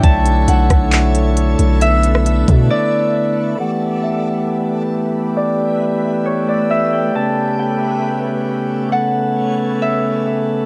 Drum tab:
HH |x-x-x-x-x-x-x-x-|x-x-x-x---------|----------------|----------------|
CP |--------x-------|----------------|----------------|----------------|
SD |------r---------|---r------------|----------------|----------------|
BD |o-----o---------|------o---------|----------------|----------------|

HH |----------------|----------------|
CP |----------------|----------------|
SD |----------------|----------------|
BD |----------------|----------------|